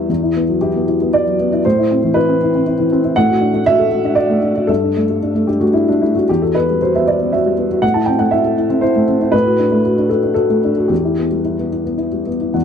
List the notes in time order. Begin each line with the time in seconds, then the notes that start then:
Already playing: E2 G3 B3 E4 E5
0.09 E2
0.23 E4
0.36 B3
0.49 F#3
0.61 E4 G4
0.76 B3
0.88 E4
1.02 B3
1.13 E4 D5
1.26 F#3
1.40 B3
1.53 E4
1.65 A2 C5
1.79 E4
1.91 C4
2.04 E3
2.14 E4 B4
2.29 C4
2.43 E4
2.55 C4
2.67 E4
2.80 E3
2.92 C4
3.04 E4
3.16 A2 F#5
3.29 F#4
3.41 D4
3.54 A3
3.66 F#4 E5
3.79 A4
3.91 F#4
4.04 D4
4.15 F#4 D5
4.30 A3
4.42 D4
4.56 F#4
4.67 G2 A4
4.84 D4
4.96 A3
5.09 G3
5.23 D4
5.35 A3
5.47 D4 G4
5.60 A3 F#4
5.73 D4 E4
5.89 G3 D4
6.01 A3 E4
6.15 D4 F#4
6.29 E2 G4
6.42 F#4 A4
6.55 B3 B4
6.71 G3
6.82 F#4 C5
6.95 B3 E5
7.07 F#4 D5
7.21 B3
7.33 F#4 E5
7.46 G3
7.59 B3
7.71 F#4
7.82 A2 F#5
7.94 E4 A5
8.06 C4 G5
8.19 A3 F#5
8.31 E4 E5
8.45 A4
8.58 E4
8.70 C4
8.81 E4 C5
8.96 A3
9.08 C4
9.21 E4
9.32 A2 B4
9.45 F#4
9.59 D4
9.71 A3
9.85 F#4
9.98 D4
10.09 F#4 A4
10.23 D4
10.34 F#4 A4
10.49 A3
10.64 D4
10.78 F#4
10.88 E2 G4
11.05 E4
11.18 B3
11.32 G3
11.45 E4
11.59 B3
11.72 E4
11.85 B3
11.98 E4
12.13 G3
12.26 B3
12.41 E4
12.54 E2 F#5